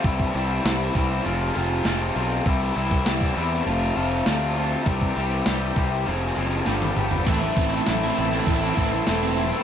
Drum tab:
CC |----------------|----------------|----------------|x---------------|
HH |x-xxx-x-x-x-x-x-|x-x-x-x-x-xxx-x-|x-xxx-x-x-x-x-x-|x-xxx-xxx-x-x-xx|
SD |----o-------o---|----o-------o---|----o-------o---|----o-------o---|
T1 |----------------|----------------|-------------o--|----------------|
T2 |----------------|----------------|--------------o-|----------------|
FT |----------------|----------------|---------------o|----------------|
BD |oo----o---------|o--o-o----------|oo----o---------|o-o-----o-o-----|